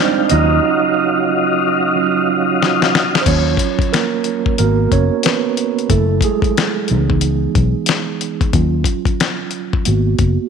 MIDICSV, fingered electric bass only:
0, 0, Header, 1, 2, 480
1, 0, Start_track
1, 0, Tempo, 659341
1, 454, Time_signature, 4, 2, 24, 8
1, 7637, End_track
2, 0, Start_track
2, 0, Title_t, "Fingered electric bass"
2, 0, Program_c, 0, 33
2, 231, Note_on_c, 0, 39, 100
2, 427, Note_off_c, 0, 39, 0
2, 2381, Note_on_c, 0, 39, 84
2, 2581, Note_off_c, 0, 39, 0
2, 3348, Note_on_c, 0, 32, 90
2, 3545, Note_off_c, 0, 32, 0
2, 3586, Note_on_c, 0, 30, 70
2, 3703, Note_off_c, 0, 30, 0
2, 4299, Note_on_c, 0, 30, 90
2, 4500, Note_off_c, 0, 30, 0
2, 5032, Note_on_c, 0, 37, 82
2, 5431, Note_off_c, 0, 37, 0
2, 5506, Note_on_c, 0, 35, 80
2, 5624, Note_off_c, 0, 35, 0
2, 6220, Note_on_c, 0, 39, 91
2, 6421, Note_off_c, 0, 39, 0
2, 7189, Note_on_c, 0, 32, 91
2, 7386, Note_off_c, 0, 32, 0
2, 7424, Note_on_c, 0, 30, 80
2, 7543, Note_off_c, 0, 30, 0
2, 7637, End_track
0, 0, End_of_file